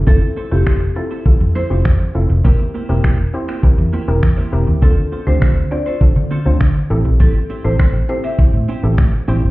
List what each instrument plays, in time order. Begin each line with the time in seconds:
0.07 fingered electric bass F1, clean electric guitar C4 E4 A4 C5, synth pluck C4 E4 F4 A4, marimba A4, kick
0.36 clean electric guitar C4 E4 A4 C5
0.51 fingered electric bass F1, synth pluck C4 E4 F4 A4, clean electric guitar C4 E4 A4 C5, marimba G4
0.66 clean electric guitar C4 E4 A4 C5, finger snap, kick
0.81 muted clean electric guitar stroke
0.96 synth pluck C4 E4 F4 A4, marimba A4, muted clean electric guitar stroke
1.11 clean electric guitar C4 E4 A4 C5
1.26 synth pluck C4 E4 F4 A4, muted clean electric guitar stroke, muted fingered electric bass stroke, kick
1.41 fingered electric bass F2, muted clean electric guitar stroke
1.55 clean electric guitar C4 E4 A4 C5, marimba C5
1.70 fingered electric bass F1, synth pluck C4 E4 F4 G4, clean electric guitar C4 E4 A4 C5
1.85 fingered electric bass F2, finger snap, muted clean electric guitar stroke, kick
2.00 muted clean electric guitar stroke
2.15 fingered electric bass F1, synth pluck C4 E4 F4 A4
2.30 fingered electric bass F1, muted clean electric guitar stroke
2.44 fingered electric bass E1, clean electric guitar A#3 E4 G4 C5, synth pluck C4 E4 G4 A#4, kick
2.74 clean electric guitar A#3 E4 G4 C5
2.89 fingered electric bass E1, clean electric guitar A#3 E4 G4 C5, synth pluck C4 E4 G4 A#4
3.04 fingered electric bass E1, clean electric guitar A#3 E4 G4 C5, finger snap, kick
3.19 muted clean electric guitar stroke
3.34 synth pluck C4 E4 G4 C5, muted clean electric guitar stroke
3.48 clean electric guitar A#3 E4 G4 C5, finger snap
3.63 synth pluck C4 E4 G4 A#4, muted fingered electric bass stroke, kick
3.78 fingered electric bass E2, muted clean electric guitar stroke
3.93 clean electric guitar A#3 E4 G4 C5
4.08 fingered electric bass E1, synth pluck C4 E4 G4 A#4, muted clean electric guitar stroke
4.23 fingered electric bass E2, finger snap, muted clean electric guitar stroke, kick
4.37 clean electric guitar A#3 E4 G4 C5
4.52 fingered electric bass E1, synth pluck C4 E4 G4 A#4, muted clean electric guitar stroke
4.67 fingered electric bass D#2, muted clean electric guitar stroke
4.82 fingered electric bass D2, clean electric guitar C4 F4 A4 C5, synth pluck C4 D4 F4 A4, marimba A4, kick
5.12 clean electric guitar C4 F4 A4 C5
5.27 fingered electric bass D2, synth pluck C4 D4 F4 G4, clean electric guitar C4 F4 A4 C5, marimba C5
5.42 fingered electric bass D2, clean electric guitar C4 F4 A4 C5, finger snap, kick
5.57 muted clean electric guitar stroke
5.71 synth pluck C4 D4 F4 C5, marimba D5, muted clean electric guitar stroke
5.86 clean electric guitar C4 F4 A4 C5, marimba C5
6.01 synth pluck C4 D4 F4 A4, muted clean electric guitar stroke, muted fingered electric bass stroke, kick
6.16 fingered electric bass D3, muted clean electric guitar stroke
6.31 clean electric guitar C4 F4 A4 C5
6.45 fingered electric bass D2, synth pluck C4 D4 F4 C5, clean electric guitar C4 F4 A4 C5
6.61 fingered electric bass D3, finger snap, muted clean electric guitar stroke, kick
6.75 muted clean electric guitar stroke
6.90 fingered electric bass A1, synth pluck C4 E4 G4 A4
7.05 fingered electric bass A#1, muted clean electric guitar stroke
7.20 fingered electric bass A1, clean electric guitar C4 E4 G4 C5, marimba A4, kick, closed hi-hat
7.50 clean electric guitar C4 E4 G4 C5, closed hi-hat
7.64 fingered electric bass A1, synth pluck C4 E4 G4 A4, clean electric guitar C4 E4 G4 C5, marimba C5
7.79 fingered electric bass A1, clean electric guitar C4 E4 G4 C5, finger snap, kick, closed hi-hat
7.94 muted clean electric guitar stroke
8.09 synth pluck C4 E4 G4 A4, marimba C5, muted clean electric guitar stroke, closed hi-hat
8.24 clean electric guitar C4 E4 G4 C5, marimba E5
8.39 synth pluck C4 E4 G4 C5, muted fingered electric bass stroke, kick, closed hi-hat
8.54 fingered electric bass A2, muted clean electric guitar stroke
8.68 clean electric guitar C4 E4 G4 C5, closed hi-hat
8.83 fingered electric bass A1, synth pluck C4 E4 G4 A4
8.98 fingered electric bass A2, finger snap, muted clean electric guitar stroke, kick, closed hi-hat
9.13 muted clean electric guitar stroke
9.28 fingered electric bass A1, clean electric guitar C4 E4 G4 C5, synth pluck C4 E4 G4 C5, closed hi-hat
9.43 fingered electric bass F#1, muted clean electric guitar stroke